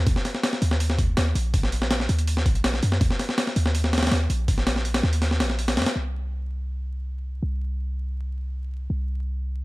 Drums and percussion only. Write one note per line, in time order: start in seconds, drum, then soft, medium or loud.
0.07 kick loud
0.07 open hi-hat medium
0.16 snare soft
0.25 snare soft
0.25 open hi-hat medium
0.34 snare soft
0.43 snare loud
0.43 open hi-hat medium
0.53 snare medium
0.62 open hi-hat medium
0.71 snare medium
0.80 open hi-hat medium
0.90 snare soft
0.99 kick medium
0.99 open hi-hat medium
1.17 snare loud
1.17 open hi-hat medium
1.35 open hi-hat medium
1.54 kick loud
1.54 open hi-hat medium
1.63 snare soft
1.72 open hi-hat medium
1.82 snare medium
1.91 snare loud
1.91 open hi-hat medium
2.00 snare soft
2.09 open hi-hat medium
2.19 closed hi-hat soft
2.27 open hi-hat medium
2.37 snare soft
2.46 kick medium
2.46 open hi-hat medium
2.55 closed hi-hat soft
2.64 snare loud
2.64 open hi-hat medium
2.74 snare soft
2.83 open hi-hat medium
2.92 snare medium
3.01 kick loud
3.01 open hi-hat medium
3.11 snare soft
3.19 snare soft
3.19 open hi-hat medium
3.29 snare soft
3.38 snare loud
3.38 open hi-hat medium
3.47 snare medium
3.56 open hi-hat medium
3.66 snare medium
3.75 open hi-hat medium
3.84 snare medium
3.93 snare medium
3.93 open hi-hat medium
3.98 snare medium
3.98 open hi-hat medium
4.03 snare medium
4.03 open hi-hat medium
4.07 snare medium
4.07 open hi-hat medium
4.12 snare loud
4.12 open hi-hat medium
4.30 open hi-hat medium
4.48 kick loud
4.48 open hi-hat medium
4.58 snare soft
4.67 snare loud
4.67 open hi-hat medium
4.76 snare soft
4.85 open hi-hat medium
4.94 snare loud
4.94 open hi-hat medium
5.03 snare soft
5.13 open hi-hat medium
5.22 snare soft
5.22 open hi-hat medium
5.31 snare soft
5.40 snare loud
5.40 open hi-hat medium
5.50 snare soft
5.59 open hi-hat medium
5.68 snare loud
5.68 open hi-hat medium
5.77 snare medium
5.77 open hi-hat medium
5.82 snare medium
5.82 open hi-hat medium
5.86 snare loud
5.86 open hi-hat medium